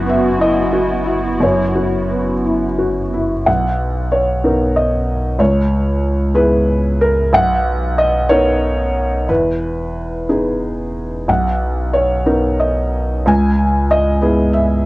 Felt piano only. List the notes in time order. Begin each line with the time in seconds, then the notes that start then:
Already playing: F#2 F#4 F#5
0.06 B3 E5
0.39 E4 D#5
0.73 F#4
1.06 E4
1.40 F#2 C#5
1.75 F#4
2.10 B3
2.44 E4
2.78 F#4
3.14 E4
3.46 B1 F#5
4.12 C#5
4.44 B3 D#4 A#4
4.76 D#5
5.39 C#2 C#5
6.34 B3 E4 G#4 B4
7.01 A#4
7.33 B1 F#5
7.98 D#5
8.29 B3 D#4 A#4 C#5
9.29 E2 B4
10.29 B3 D#4 G#4
11.28 B1 F#5
11.93 C#5
12.26 B3 D#4 A#4
12.60 D#5
13.26 C#2 G#5
13.91 D#5
14.21 B3 E4 G#4
14.54 E5